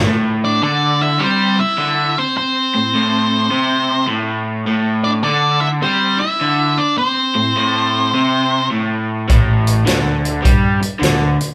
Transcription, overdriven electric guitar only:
X:1
M:4/4
L:1/8
Q:"Swing" 1/4=104
K:Am
V:1 name="Overdriven electric guitar" clef=bass
A,,2 D,2 G, z D, z | z A,, A,,2 C,2 A,,2 | A,,2 D,2 G, z D, z | z A,, A,,2 C,2 A,,2 |
A,,2 D,2 G, z D, z |]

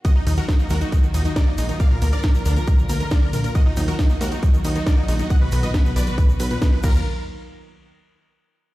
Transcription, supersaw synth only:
X:1
M:4/4
L:1/16
Q:1/4=137
K:Ebm
V:1 name="Supersaw synth"
[Ge] E E [GB] E E [GB] E E z E E [B=d] E E E | [=df] B B [Bd] B B [=DB] B B z B B [Bd] B B B | [Ge] E E [GB] E E [GB] E E z E E [B=d] E E E | [^d^f] =B B [Bd] B B [B=d] B B z B B [^DB] B _B2 |
z16 |]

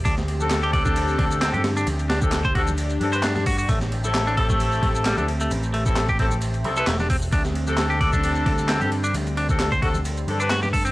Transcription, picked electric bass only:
X:1
M:4/4
L:1/16
Q:"Swing 16ths" 1/4=132
K:Ddor
V:1 name="Picked electric bass" clef=bass
D,,8- D,,2 D,,3 G,,3 | D,,8- D,,2 G,,6 | A,,,8- A,,,2 A,,,3 D,,3 | A,,,8- A,,,2 C,,2 E,,,4 |
D,,8- D,,2 D,,3 G,,3 | D,,8- D,,2 G,,6 |]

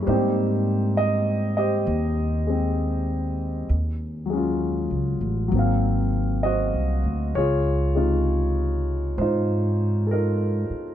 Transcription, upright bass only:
X:1
M:4/4
L:1/8
Q:"Swing" 1/4=66
K:Abmix
V:1 name="Upright bass" clef=bass
A,,4 E,,4 | E,,2- (3E,, D,, =A,,, _A,,,2- (3A,,, C,, =D,, | D,,4 A,,3 z |]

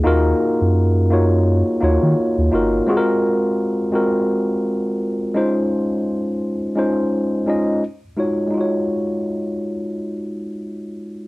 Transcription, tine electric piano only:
X:1
M:4/4
L:1/8
Q:"Swing 16ths" 1/4=85
K:Ebdor
V:1 name="Tine electric piano"
[B,EFGB]2 z [B,EFGd]2 [B,EFGd]2 [B,EFGB] | [A,CFGAB]2 z [A,CFGB]3 z [A,DEFc]- | [A,DEFc]2 z [A,DEFc]2 [A,DEFe] z [A,EFGd] | [A,EFGd]8 |]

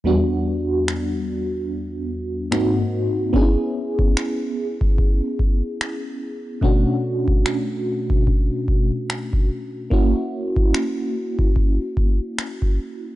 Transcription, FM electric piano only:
X:1
M:4/4
L:1/8
Q:"Swing 16ths" 1/4=73
K:Bm
V:1 name="FM electric piano"
[E,,G,B,DF]6 [^G,,^A,^B,^DF]2 | [B,CDE^G]8 | [B,,A,CDF]8 | [^A,CEF]8 |]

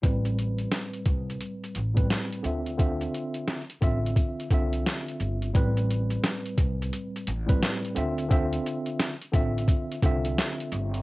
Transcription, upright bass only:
X:1
M:4/4
L:1/8
Q:"Swing 16ths" 1/4=87
K:Ddor
V:1 name="Upright bass" clef=bass
A,,,2 z C,, z A,,, z D,,- | D,, z2 A,,, z C,, z G,,, | A,,,2 z C,, z A,,, z D,,- | D,, z2 A,,, z C,, z G,,, |]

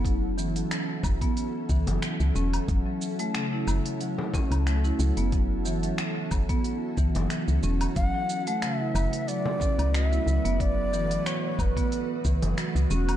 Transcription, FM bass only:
X:1
M:4/4
L:1/16
Q:"Swing 16ths" 1/4=91
K:F#m
V:1 name="FM bass" clef=bass
F,,,4 z2 F,,, z3 C,, F,,, z C,, E,,, z | F,,, z4 z F,,, z4 C,,3 C,, F,,,- | F,,,4 z2 F,,, z3 C,, F,,, z C,, E,,, z | F,,, z4 z F,,, z4 C,,3 C,, F,,,- |
F,,,4 z2 F,,, z3 C,, F,,, z C,, E,,, z |]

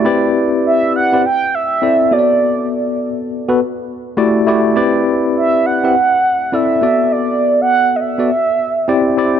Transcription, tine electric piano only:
X:1
M:4/4
L:1/16
Q:"Swing 16ths" 1/4=102
K:Dmix
V:1 name="Tine electric piano"
[CEGBd]4- [CEGBd] z2 [CEGBd] z4 [CEAd] z [B,FA^cd]2- | [B,FA^cd]4 z3 [B,FAB] z4 [A,EFGd] z [A,EFGd] z | [CEGBd]4- [CEGBd] z2 [CEGBe] z4 [CEAd] z [B,FAd]2- | [B,FAd]4 z3 [B,FAd] z4 [CEGd] z [CEGd] z |]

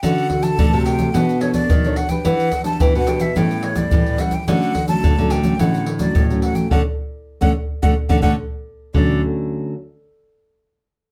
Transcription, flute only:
X:1
M:4/4
L:1/16
Q:1/4=108
K:D
V:1 name="Flute"
f3 a3 g2 f2 c d3 f g | f3 a g f g e g2 c d3 f g | f3 a3 g2 f2 z d3 f g | f z4 f z2 f z f f z4 |
d2 z12 z2 |]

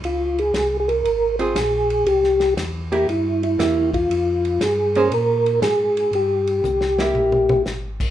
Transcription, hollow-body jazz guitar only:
X:1
M:4/4
L:1/8
Q:"Swing" 1/4=118
K:Cphr
V:1 name="Hollow-body jazz guitar"
z4 z [CFA] z2 | z3 [B,=EG] z2 [B,EG] z | z3 [B,DAc] z4 | z3 [B,=EG]3 z2 |]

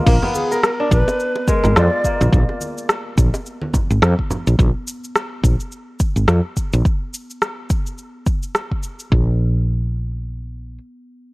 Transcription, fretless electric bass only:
X:1
M:4/4
L:1/16
Q:"Swing 16ths" 1/4=106
K:none
V:1 name="Fretless electric bass" clef=bass
_B,,, z4 z B,,, z4 _A,,, F,, z2 B,,, | _B,,, z4 z B,,, z4 _A,,, F,, z2 B,,, | _B,,, z4 z B,,, z4 _A,,, F,, z2 B,,, | z16 |
_B,,,12 z4 |]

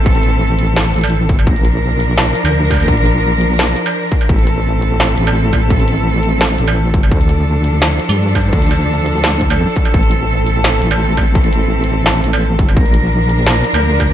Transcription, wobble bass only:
X:1
M:4/4
L:1/16
Q:1/4=170
K:Aphr
V:1 name="Wobble bass" clef=bass
A,,,8- A,,,2 A,,,4 G,,,2 | B,,,8- B,,,2 z D,,4- D,, | B,,,8- B,,,2 z6 | A,,,8- A,,,2 A,,,6- |
A,,,8- A,,,2 A,,,4 G,,,2 | D,,8- D,,2 z G,,4- G,, | D,,12 F,, z3 | A,,,8- A,,,2 A,,,6- |
A,,,8- A,,,2 A,,,4 G,,,2 | B,,,8- B,,,2 z D,,4- D,, |]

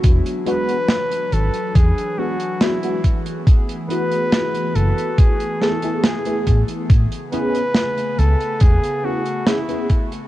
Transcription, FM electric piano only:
X:1
M:4/4
L:1/16
Q:1/4=70
K:A
V:1 name="FM electric piano"
[G,B,DF]2 [G,B,DF] z6 z [G,B,DF] z [G,B,DF] [G,B,DF] z2 | z2 [A,B,EF]8 [A,B,EG] [A,B,EG]2 [A,B,EG]3 | z2 [B,CEG] z6 z [B,CEG] z [B,CEG] [B,CEG] z2 |]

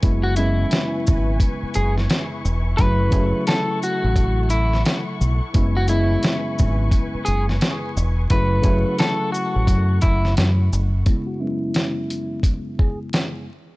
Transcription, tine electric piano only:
X:1
M:4/4
L:1/8
Q:"Swing 16ths" 1/4=87
K:C#phr
V:1 name="Tine electric piano" clef=bass
[F,,C,G,B,E] [F,,C,G,B,E]6 z | [C,F,A,E] [C,F,A,E]6 z | [F,,C,G,B,E] [F,,C,G,B,E]6 z | [C,F,A,E] [C,F,A,E]6 z |
[F,,C,G,B,E] [F,,C,G,B,E]6 z |]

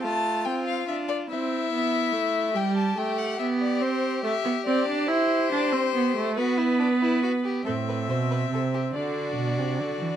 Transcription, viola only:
X:1
M:6/8
L:1/16
Q:3/8=47
K:C
V:1 name="Viola"
A,2 C2 D2 C2 B,2 A,2 | G,2 A,2 B,2 C2 A, B, C D | E2 D C B, A, B,6 | C6 D6 |]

